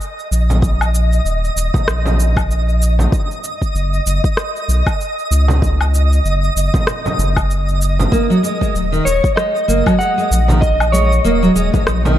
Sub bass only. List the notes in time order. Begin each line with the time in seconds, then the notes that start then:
0.31 A#1
1.25 D#1
1.56 D#1
1.87 A#1
3.75 F#1
4.06 F#1
4.68 B1
5.31 C#2
6.25 F#1
6.56 F#1
7.19 F#1
8.75 D#1
9.06 D#1
9.69 F#1
10.31 A#1
11.25 D#1
11.56 D#1
11.87 A#1